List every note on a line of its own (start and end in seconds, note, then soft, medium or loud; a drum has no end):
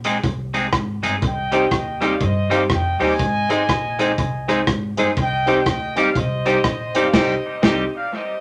0.00 0.16 A#1 medium
0.04 0.17 G#3 medium
0.04 0.17 C4 medium
0.04 0.17 D#4 medium
0.04 0.17 G#4 medium
0.04 closed hi-hat medium
0.24 0.65 C2 medium
0.24 kick loud
0.24 closed hi-hat medium
0.54 0.66 G#3 medium
0.54 0.66 C4 medium
0.54 0.66 D#4 loud
0.54 0.66 G#4 medium
0.54 closed hi-hat medium
0.73 0.99 G#1 medium
0.73 muted clean electric guitar stroke soft
0.73 kick loud
0.73 cross-stick loud
0.73 closed hi-hat medium
1.03 1.19 G1 loud
1.03 1.15 G#3 medium
1.03 1.15 C4 medium
1.03 1.15 D#4 medium
1.03 1.16 G#4 medium
1.03 closed hi-hat medium
1.22 1.64 C2 loud
1.22 1.99 D#5 medium
1.22 1.99 G5 medium
1.22 kick loud
1.22 closed hi-hat medium
1.52 1.64 G3 medium
1.52 1.63 C4 medium
1.52 1.64 C4 medium
1.52 1.64 D#4 medium
1.52 1.65 D#4 medium
1.52 1.65 G4 medium
1.52 1.64 G4 medium
1.52 1.64 C5 loud
1.52 closed hi-hat medium
1.71 2.13 D#2 medium
1.71 kick loud
1.71 cross-stick loud
1.71 closed hi-hat medium
2.01 2.13 G3 medium
2.01 2.13 C4 medium
2.01 2.14 C4 medium
2.01 2.13 D#4 medium
2.01 2.14 D#4 loud
2.01 2.14 G4 medium
2.01 2.13 G4 medium
2.01 2.13 C5 medium
2.01 2.22 D5 medium
2.01 2.21 F5 medium
2.01 closed hi-hat medium
2.21 2.72 G2 loud
2.21 2.52 C5 medium
2.21 2.52 D#5 medium
2.21 kick loud
2.21 closed hi-hat medium
2.50 2.62 G3 medium
2.50 2.62 C4 medium
2.50 2.63 C4 loud
2.50 2.62 D#4 medium
2.50 2.63 D#4 medium
2.50 2.63 G4 medium
2.50 2.62 G4 medium
2.50 2.62 C5 loud
2.50 2.61 D5 medium
2.50 2.60 F5 medium
2.50 closed hi-hat medium
2.70 2.96 F2 medium
2.70 2.99 D#5 medium
2.70 2.99 G5 loud
2.70 muted clean electric guitar stroke soft
2.70 kick loud
2.70 cross-stick loud
2.70 closed hi-hat medium
3.00 3.17 D#2 medium
3.00 3.12 G3 medium
3.00 3.11 C4 medium
3.00 3.12 C4 medium
3.00 3.11 D#4 medium
3.00 3.12 D#4 medium
3.00 3.12 G4 medium
3.00 3.13 G4 medium
3.00 3.12 C5 loud
3.00 4.64 D#5 medium
3.00 4.64 G#5 loud
3.00 open hi-hat medium
3.19 3.61 G#1 medium
3.19 kick loud
3.19 closed hi-hat medium
3.49 3.62 G#3 medium
3.49 3.60 C4 medium
3.49 3.62 C4 medium
3.49 3.61 D#4 medium
3.49 3.62 D#4 medium
3.49 3.61 G#4 medium
3.49 3.62 G#4 medium
3.49 3.61 C5 loud
3.49 closed hi-hat medium
3.69 4.11 A#1 medium
3.69 kick loud
3.69 cross-stick loud
3.69 closed hi-hat medium
3.99 4.11 G#3 medium
3.99 4.10 C4 medium
3.99 4.11 C4 medium
3.99 4.10 D#4 medium
3.99 4.11 D#4 medium
3.99 4.10 G#4 medium
3.99 4.12 G#4 loud
3.99 4.11 C5 loud
3.99 closed hi-hat medium
4.18 4.60 C2 medium
4.18 kick loud
4.18 closed hi-hat medium
4.48 4.60 G#3 medium
4.48 4.59 C4 loud
4.48 4.60 C4 medium
4.48 4.60 D#4 medium
4.48 4.61 D#4 loud
4.48 4.60 G#4 medium
4.48 4.61 G#4 medium
4.48 4.60 C5 loud
4.48 closed hi-hat medium
4.67 4.93 G#1 medium
4.67 muted clean electric guitar stroke soft
4.67 kick loud
4.67 cross-stick loud
4.67 closed hi-hat medium
4.97 5.14 G1 medium
4.97 5.10 G#3 medium
4.97 5.08 C4 medium
4.97 5.10 C4 medium
4.97 5.09 D#4 medium
4.97 5.10 D#4 medium
4.97 5.09 G#4 medium
4.97 5.11 G#4 medium
4.97 5.09 C5 medium
4.97 closed hi-hat loud
5.17 5.59 C2 loud
5.17 5.64 D#5 medium
5.17 5.64 G5 loud
5.17 kick loud
5.17 closed hi-hat medium
5.46 5.59 G3 medium
5.46 5.58 C4 medium
5.46 5.59 C4 medium
5.46 5.58 D#4 medium
5.46 5.59 D#4 medium
5.46 5.58 G4 loud
5.46 5.60 G4 loud
5.46 5.58 C5 loud
5.46 closed hi-hat medium
5.66 6.17 D2 medium
5.66 5.94 D#5 medium
5.66 5.95 G5 loud
5.66 kick loud
5.66 cross-stick loud
5.66 closed hi-hat medium
5.96 6.08 G3 medium
5.96 6.07 C4 medium
5.96 6.09 C4 medium
5.96 6.07 D#4 medium
5.96 6.09 D#4 medium
5.96 6.07 G4 medium
5.96 6.09 G4 medium
5.96 6.08 C5 medium
5.96 6.16 D5 medium
5.96 6.16 F5 medium
5.96 closed hi-hat medium
6.15 6.57 C2 medium
6.15 6.96 C5 medium
6.15 6.96 D#5 loud
6.15 kick loud
6.15 closed hi-hat medium
6.45 6.57 G3 medium
6.45 6.56 C4 medium
6.45 6.58 C4 medium
6.45 6.57 D#4 medium
6.45 6.58 D#4 medium
6.45 6.57 G4 medium
6.45 6.58 G4 loud
6.45 6.57 C5 loud
6.45 closed hi-hat medium
6.64 6.90 A#1 medium
6.64 muted clean electric guitar stroke soft
6.64 kick loud
6.64 cross-stick loud
6.64 closed hi-hat medium
6.94 7.11 G1 medium
6.94 7.07 G3 medium
6.94 7.06 C4 medium
6.94 7.07 C4 medium
6.94 7.06 D#4 medium
6.94 7.07 D#4 loud
6.94 7.06 G4 medium
6.94 7.07 G4 loud
6.94 7.06 C5 loud
6.94 7.15 D5 medium
6.94 7.15 F5 medium
6.94 closed hi-hat loud
7.13 7.34 C2 medium
7.13 7.34 G3 medium
7.13 7.34 C4 medium
7.13 7.34 D#4 medium
7.13 7.34 G4 loud
7.13 7.34 C5 loud
7.13 7.61 C5 medium
7.13 7.60 D#5 medium
7.13 kick loud
7.13 snare loud
7.13 crash medium
7.62 7.84 C2 medium
7.62 7.83 G3 medium
7.62 7.83 C4 loud
7.62 7.83 C4 medium
7.62 7.83 D#4 loud
7.62 7.84 D#4 medium
7.62 7.84 G4 loud
7.62 7.84 C5 loud
7.62 7.92 C5 medium
7.62 7.92 D#5 medium
7.62 kick loud
7.62 snare loud
7.96 8.13 D5 medium
7.96 8.12 F5 medium
8.14 8.40 C5 medium
8.14 8.40 D#5 medium